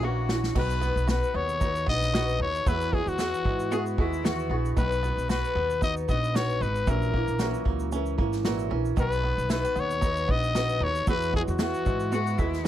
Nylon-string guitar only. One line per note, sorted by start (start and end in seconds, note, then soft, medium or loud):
0.02 0.29 E3 medium
0.02 0.29 C#4 medium
0.02 0.30 E4 medium
0.02 0.27 F#4 medium
0.29 0.55 E3 soft
0.29 0.56 C#4 medium
0.29 0.56 E4 medium
0.29 0.55 F#4 medium
0.54 0.82 B2 medium
0.54 0.82 B3 medium
0.54 0.82 D#4 medium
0.54 0.82 F#4 medium
0.54 0.81 B4 medium
0.82 1.09 D#4 soft
0.82 1.09 F#4 soft
0.82 1.08 B4 soft
1.09 1.61 B2 medium
1.09 1.61 B3 medium
1.09 1.61 D#4 medium
1.09 1.63 F#4 medium
1.09 1.64 B4 medium
1.61 1.88 B3 medium
1.61 1.88 D#4 medium
1.61 1.88 F#4 medium
1.61 1.86 B4 medium
1.88 2.14 D#4 soft
1.88 2.15 F#4 soft
1.88 2.14 B4 medium
2.14 2.41 B2 medium
2.14 2.41 B3 medium
2.14 2.41 D#4 medium
2.14 2.41 F#4 medium
2.14 2.39 B4 medium
2.41 2.68 D#4 soft
2.41 2.68 F#4 soft
2.41 2.67 B4 medium
2.67 2.93 E3 medium
2.67 2.94 B3 medium
2.67 2.94 E4 medium
2.67 2.91 F#4 medium
2.67 2.93 G#4 medium
2.92 3.19 E4 soft
2.92 3.19 F#4 medium
2.92 3.20 G#4 medium
3.19 3.72 E3 medium
3.19 3.71 B3 medium
3.19 3.71 E4 medium
3.19 3.74 F#4 medium
3.19 3.72 G#4 medium
3.71 3.98 B3 medium
3.71 3.98 E4 medium
3.71 3.97 F#4 medium
3.71 3.98 G#4 medium
3.98 4.24 E4 soft
3.98 4.24 F#4 medium
3.98 4.24 G#4 medium
4.23 4.50 E3 medium
4.23 4.51 B3 medium
4.23 4.51 E4 medium
4.23 4.49 F#4 medium
4.23 4.51 G#4 loud
4.50 4.78 E4 soft
4.50 4.77 F#4 medium
4.50 4.78 G#4 medium
4.77 5.03 B2 medium
4.77 5.04 B3 medium
4.77 5.04 D#4 medium
4.77 5.04 F#4 medium
4.77 5.02 B4 medium
5.03 5.29 D#4 soft
5.03 5.30 F#4 soft
5.03 5.30 B4 medium
5.30 5.82 B2 medium
5.30 5.80 B3 medium
5.30 5.82 D#4 medium
5.30 5.83 F#4 medium
5.30 5.83 B4 medium
5.81 6.08 B3 medium
5.81 6.09 D#4 medium
5.81 6.09 F#4 medium
5.81 6.07 B4 medium
6.08 6.34 D#4 soft
6.08 6.35 F#4 soft
6.08 6.34 B4 medium
6.34 6.61 B2 medium
6.34 6.61 B3 medium
6.34 6.61 D#4 medium
6.34 6.61 F#4 medium
6.34 6.59 B4 medium
6.60 6.88 D#4 soft
6.60 6.88 F#4 medium
6.60 6.87 B4 medium
6.87 7.13 A#2 medium
6.87 7.14 E3 medium
6.87 7.14 F#3 medium
6.87 7.13 C#4 medium
6.87 7.14 E4 medium
6.87 7.12 A#4 medium
7.13 7.39 E3 soft
7.13 7.40 C#4 soft
7.13 7.40 E4 soft
7.13 7.40 A#4 medium
7.39 7.92 A#2 medium
7.39 7.91 E3 medium
7.39 7.95 F#3 medium
7.39 7.93 C#4 medium
7.39 7.92 E4 medium
7.39 7.93 A#4 medium
7.92 8.19 E3 medium
7.92 8.18 C#4 medium
7.92 8.19 E4 medium
7.92 8.16 A#4 medium
8.18 8.45 E3 soft
8.18 8.45 C#4 medium
8.18 8.45 E4 medium
8.18 8.44 A#4 medium
8.45 8.71 A#2 medium
8.45 8.72 E3 medium
8.45 8.71 F#3 medium
8.45 8.70 C#4 medium
8.45 8.71 E4 medium
8.45 8.69 A#4 medium
8.70 8.97 E3 soft
8.70 8.97 C#4 medium
8.70 8.98 E4 soft
8.70 8.97 A#4 medium
8.97 9.23 B2 medium
8.97 9.24 B3 medium
8.97 9.24 D#4 medium
8.97 9.23 F#4 medium
8.97 9.21 B4 medium
9.22 9.50 D#4 soft
9.22 9.50 F#4 soft
9.22 9.49 B4 soft
9.50 10.02 B2 medium
9.50 10.01 B3 medium
9.50 10.01 D#4 medium
9.50 10.04 F#4 medium
9.50 10.04 B4 medium
10.01 10.28 B3 medium
10.01 10.29 D#4 medium
10.01 10.29 F#4 medium
10.01 10.27 B4 medium
10.28 10.55 D#4 soft
10.28 10.55 F#4 soft
10.28 10.55 B4 medium
10.54 10.81 B2 medium
10.54 10.82 B3 medium
10.54 10.82 D#4 medium
10.54 10.82 F#4 medium
10.54 10.80 B4 medium
10.81 11.08 D#4 soft
10.81 11.08 F#4 soft
10.81 11.07 B4 medium
11.07 11.34 E3 medium
11.07 11.34 B3 medium
11.07 11.34 E4 medium
11.07 11.32 F#4 medium
11.07 11.34 G#4 medium
11.33 11.59 E4 soft
11.33 11.60 F#4 soft
11.33 11.59 G#4 medium
11.59 12.12 E3 medium
11.59 12.11 B3 medium
11.59 12.12 E4 medium
11.59 12.15 F#4 medium
11.59 12.13 G#4 medium
12.12 12.38 B3 medium
12.12 12.39 E4 medium
12.12 12.36 F#4 medium
12.12 12.39 G#4 medium
12.38 12.64 E4 soft
12.38 12.64 F#4 medium
12.38 12.64 G#4 medium
12.64 12.68 E3 medium
12.64 12.68 B3 medium